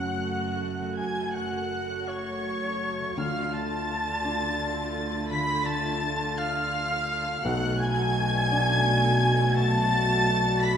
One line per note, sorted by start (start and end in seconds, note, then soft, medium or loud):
0.00 3.13 F#1 medium
0.00 0.94 F#2 soft
0.00 0.97 F#2 medium
0.00 3.13 F#2 medium
0.00 0.78 C#3 soft
0.00 3.13 A3 medium
0.00 3.14 A3 medium
0.00 0.60 C#4 soft
0.00 3.17 C#4 soft
0.00 1.52 F#4 soft
0.00 3.13 F#4 medium
0.00 3.14 F#4 medium
0.00 0.42 A4 soft
0.00 1.89 C#5 soft
0.00 0.24 F#5 medium
0.00 0.96 F#5 medium
0.00 0.98 F#5 medium
0.00 0.98 F#6 medium
0.07 3.97 C#6 soft
0.25 2.07 F#5 soft
0.43 1.71 A4 soft
0.61 1.15 C#4 soft
0.79 1.33 C#3 soft
0.96 3.21 F#2 medium
0.96 1.33 G#5 medium
0.96 1.36 G#5 medium
0.96 1.34 G#5 medium
0.96 1.34 G#6 medium
1.16 2.80 C#4 soft
1.33 2.99 C#3 soft
1.33 2.09 F#5 medium
1.33 2.08 F#5 medium
1.33 2.10 F#5 medium
1.33 2.06 F#6 medium
1.53 3.20 F#4 soft
1.72 2.62 A4 soft
1.90 3.20 C#5 soft
2.08 3.15 C#5 medium
2.08 3.17 C#5 medium
2.08 2.44 F#5 medium
2.08 3.17 C#6 medium
2.45 3.20 F#5 soft
2.63 3.88 A4 soft
2.82 3.20 C#4 soft
3.00 3.21 C#3 soft
3.16 5.26 D2 medium
3.16 7.45 D2 medium
3.16 7.44 D3 medium
3.16 5.29 D3 medium
3.16 7.41 A3 medium
3.16 7.29 A3 medium
3.16 7.29 F4 medium
3.16 7.40 F4 medium
3.16 3.53 F5 medium
3.16 3.53 F6 medium
3.35 5.11 A3 soft
3.52 4.93 D4 medium
3.52 5.02 A5 medium
3.52 5.30 A5 medium
3.52 5.00 A5 medium
3.52 5.30 A6 loud
3.71 5.82 F4 medium
3.89 4.76 A4 medium
4.06 6.18 D5 medium
4.24 7.45 D4 medium
4.24 4.58 F5 medium
4.59 6.37 F5 medium
4.77 6.01 A4 medium
4.95 5.47 D4 medium
5.12 5.65 A3 medium
5.29 7.48 D3 medium
5.29 5.65 B5 medium
5.29 5.68 B5 medium
5.29 5.67 B5 medium
5.29 5.65 B6 loud
5.48 7.08 D4 medium
5.65 7.26 A3 medium
5.65 6.37 A5 medium
5.65 6.40 A5 medium
5.65 6.36 A5 medium
5.65 6.38 A6 loud
5.84 7.48 F4 medium
6.02 6.90 A4 medium
6.20 8.33 D5 medium
6.37 7.46 F5 medium
6.37 7.45 F5 loud
6.37 6.72 F5 medium
6.37 7.45 F5 loud
6.37 7.45 F6 loud
6.74 7.48 F5 medium
6.92 8.15 A4 medium
7.09 7.80 D4 medium
7.27 10.77 A3 medium
7.44 9.53 B1 medium
7.44 10.77 B1 medium
7.44 10.77 B2 medium
7.44 9.55 B2 medium
7.44 10.77 A3 medium
7.44 10.77 F#4 medium
7.44 7.80 F#5 medium
7.44 7.83 F#5 medium
7.44 7.81 F#5 medium
7.44 7.81 F#6 loud
7.63 9.38 F#3 medium
7.80 9.20 D4 medium
7.80 9.56 G#5 loud
7.80 9.53 G#5 loud
7.80 9.58 G#5 loud
7.80 9.57 G#6 loud
7.99 10.09 F#4 medium
8.16 9.02 A4 medium
8.34 10.46 D5 medium
8.51 10.77 D4 medium
8.51 8.86 F#5 medium
8.69 10.77 B5 medium
8.87 10.64 F#5 medium
9.03 10.28 A4 medium
9.39 9.90 F#3 medium
9.57 10.77 B2 medium
9.57 10.62 A5 loud
9.57 10.66 A5 loud
9.57 10.65 A5 loud
9.57 10.62 A6 loud
9.74 10.77 D4 medium
9.92 10.77 F#3 medium
10.10 10.77 F#4 medium
10.29 10.77 A4 medium
10.47 10.77 D5 medium
10.63 10.77 F#5 medium
10.63 10.77 B5 loud
10.63 10.77 B6 loud